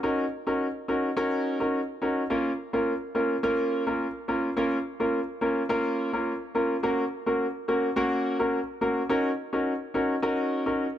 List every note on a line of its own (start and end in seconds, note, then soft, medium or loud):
0.03 0.23 C#4 medium
0.03 0.23 D#4 medium
0.03 0.23 F#4 medium
0.03 0.23 A#4 loud
0.47 0.65 C#4 medium
0.47 0.65 D#4 medium
0.47 0.66 F#4 medium
0.47 0.66 A#4 medium
0.88 1.08 C#4 medium
0.88 1.08 D#4 medium
0.88 1.08 F#4 medium
0.88 1.08 A#4 medium
1.17 1.57 C#4 loud
1.17 1.57 D#4 medium
1.17 1.57 F#4 medium
1.17 1.57 A#4 loud
1.60 1.79 C#4 medium
1.60 1.79 D#4 medium
1.60 1.79 F#4 medium
1.60 1.79 A#4 medium
2.02 2.21 C#4 medium
2.02 2.22 D#4 medium
2.02 2.22 F#4 medium
2.02 2.22 A#4 medium
2.30 2.50 A#3 medium
2.30 2.50 C#4 medium
2.30 2.50 F4 medium
2.30 2.50 A#4 loud
2.73 2.92 A#3 medium
2.73 2.92 C#4 medium
2.73 2.92 F4 medium
2.73 2.92 A#4 medium
3.15 3.35 A#3 medium
3.15 3.35 C#4 medium
3.15 3.35 F4 medium
3.15 3.35 A#4 medium
3.43 3.83 A#3 medium
3.43 3.83 C#4 medium
3.43 3.83 F4 medium
3.43 3.83 A#4 loud
3.87 4.05 A#3 medium
3.87 4.05 C#4 medium
3.87 4.05 F4 medium
3.87 4.05 A#4 medium
4.28 4.48 A#3 medium
4.28 4.48 C#4 medium
4.28 4.48 F4 medium
4.28 4.48 A#4 medium
4.56 4.76 A#3 medium
4.56 4.76 C#4 medium
4.56 4.76 F4 medium
4.56 4.77 A#4 loud
5.00 5.18 A#3 medium
5.00 5.19 C#4 medium
5.00 5.19 F4 medium
5.00 5.19 A#4 medium
5.41 5.61 A#3 medium
5.41 5.61 C#4 medium
5.41 5.61 F4 medium
5.41 5.61 A#4 medium
5.69 6.09 A#3 loud
5.69 6.09 C#4 medium
5.69 6.10 F4 medium
5.69 6.10 A#4 loud
6.13 6.32 A#3 medium
6.13 6.32 C#4 medium
6.13 6.32 F4 medium
6.13 6.32 A#4 medium
6.55 6.74 A#3 medium
6.55 6.74 C#4 medium
6.55 6.75 F4 medium
6.55 6.75 A#4 medium
6.83 7.03 A#3 medium
6.83 7.03 C#4 medium
6.83 7.03 F#4 medium
6.83 7.03 A#4 loud
7.26 7.45 A#3 medium
7.26 7.45 C#4 medium
7.26 7.45 F#4 medium
7.26 7.45 A#4 medium
7.68 7.88 A#3 medium
7.68 7.88 C#4 medium
7.68 7.88 F#4 medium
7.68 7.88 A#4 medium
7.96 8.36 A#3 loud
7.96 8.36 C#4 medium
7.96 8.36 F#4 medium
7.96 8.36 A#4 loud
8.39 8.58 A#3 medium
8.39 8.58 C#4 medium
8.39 8.58 F#4 medium
8.39 8.58 A#4 medium
8.81 9.01 A#3 medium
8.81 9.01 C#4 medium
8.81 9.01 F#4 medium
8.81 9.01 A#4 medium
9.09 9.29 C#4 medium
9.09 9.29 D#4 medium
9.09 9.29 F#4 medium
9.09 9.29 A#4 loud
9.53 9.71 C#4 medium
9.53 9.71 D#4 medium
9.53 9.71 F#4 medium
9.53 9.72 A#4 medium
9.94 10.14 C#4 medium
9.94 10.14 D#4 medium
9.94 10.14 F#4 medium
9.94 10.14 A#4 medium
10.22 10.62 C#4 medium
10.22 10.62 D#4 medium
10.22 10.63 F#4 medium
10.22 10.63 A#4 loud
10.66 10.84 C#4 medium
10.66 10.85 D#4 medium
10.66 10.85 F#4 medium
10.66 10.85 A#4 medium